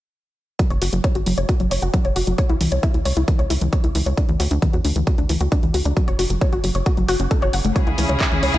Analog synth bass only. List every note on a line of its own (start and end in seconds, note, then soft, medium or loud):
0.70 0.78 F#1 medium
0.82 0.89 F#1 loud
0.93 1.01 F#1 medium
1.15 1.23 G#1 medium
1.27 1.34 F#1 loud
1.38 1.45 F#1 medium
1.60 1.68 F#1 medium
1.71 1.79 F#1 loud
1.82 1.90 F#1 medium
2.05 2.12 F#1 medium
2.16 2.24 F#1 medium
2.27 2.35 F#1 medium
2.50 2.57 C#2 medium
2.61 2.68 C#2 loud
2.72 2.80 C#2 medium
2.94 3.02 D2 medium
3.06 3.13 C#2 loud
3.17 3.24 C#2 medium
3.39 3.47 C#2 medium
3.50 3.58 C#2 loud
3.62 3.69 C#2 medium
3.84 3.92 C#2 medium
3.95 4.03 C#2 loud
4.06 4.14 C#2 medium
4.29 4.36 D2 medium
4.40 4.48 D2 loud
4.51 4.59 D2 medium
4.74 4.81 E2 medium
4.85 4.92 D2 loud
4.96 5.04 D2 medium
5.18 5.26 D2 medium
5.30 5.37 D2 loud
5.41 5.48 D2 medium
5.63 5.71 D2 medium
5.74 5.82 D2 loud
5.85 5.93 D2 loud
6.08 6.15 F#1 medium
6.19 6.27 F#1 loud
6.30 6.38 F#1 medium
6.53 6.60 G#1 medium
6.64 6.71 F#1 loud
6.75 6.83 F#1 medium
6.97 7.05 F#1 medium
7.09 7.16 F#1 loud
7.20 7.27 F#1 medium
7.42 7.50 F#1 medium
7.54 7.61 F#1 loud
7.65 7.72 F#1 medium
7.87 7.95 C#2 medium
7.98 8.06 C#2 loud
8.09 8.17 C#2 medium
8.32 8.39 D2 medium
8.43 8.51 C#2 loud
8.54 8.58 C#2 medium